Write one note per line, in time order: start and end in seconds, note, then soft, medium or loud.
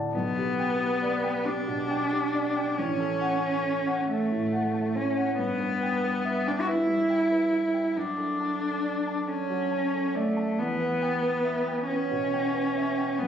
0.00 0.16 A2 soft
0.00 0.16 F#4 soft
0.00 0.16 D5 soft
0.00 0.16 A5 soft
0.15 2.74 B1 soft
0.15 1.47 B3 medium
0.38 0.71 G4 soft
0.60 0.93 G5 soft
0.80 1.14 G4 soft
1.02 1.36 D5 soft
1.24 1.58 G5 soft
1.45 2.79 D4 medium
1.45 1.80 G4 soft
1.68 2.03 B2 soft
1.90 2.25 G5 soft
2.13 2.47 G4 soft
2.34 2.69 D5 soft
2.56 2.77 G5 soft
2.78 5.35 A1 soft
2.78 4.09 C#4 medium
3.00 3.34 A4 soft
3.21 3.56 F#5 soft
3.43 3.78 A4 soft
3.64 3.99 C#5 soft
3.87 4.21 F#5 soft
4.09 4.98 A3 medium
4.09 4.44 A4 soft
4.32 4.66 A2 soft
4.53 4.87 F#5 soft
4.74 5.08 A4 soft
4.95 5.38 C#4 medium
4.95 5.30 C#5 soft
5.17 5.38 F#5 soft
5.38 7.91 G2 soft
5.38 6.50 B3 medium
5.60 5.95 B4 soft
5.83 6.17 G5 soft
6.04 6.38 B4 soft
6.25 6.59 E5 soft
6.47 6.63 D4 medium
6.47 6.81 G5 soft
6.61 6.69 F#4 medium
6.67 8.00 E4 medium
6.67 7.02 B4 soft
6.89 7.22 G3 soft
7.10 7.44 G5 soft
7.32 7.66 B4 soft
7.52 7.87 E5 soft
7.74 7.96 G5 soft
7.96 10.54 F#2 soft
7.96 9.29 D4 medium
8.18 8.53 A4 soft
8.40 8.75 A5 soft
8.61 8.96 A4 soft
8.83 9.18 D5 soft
9.07 9.41 A5 soft
9.28 10.18 C#4 medium
9.28 9.63 A4 soft
9.50 9.84 F#3 soft
9.71 10.06 A5 soft
9.94 10.28 A4 soft
10.15 10.60 A3 medium
10.15 10.49 D5 soft
10.37 10.58 A5 soft
10.59 13.18 E2 soft
10.59 11.85 B3 medium
10.80 11.14 B4 soft
11.02 11.36 G5 soft
11.23 11.57 B4 soft
11.45 11.79 E5 soft
11.68 12.02 G5 soft
11.86 13.21 C#4 medium
11.86 12.24 B4 soft
12.11 12.46 B2 soft
12.34 12.68 G5 soft
12.55 12.90 B4 soft
12.77 13.13 E5 soft
12.98 13.21 G5 soft
13.19 13.27 F#2 soft
13.19 13.27 B3 medium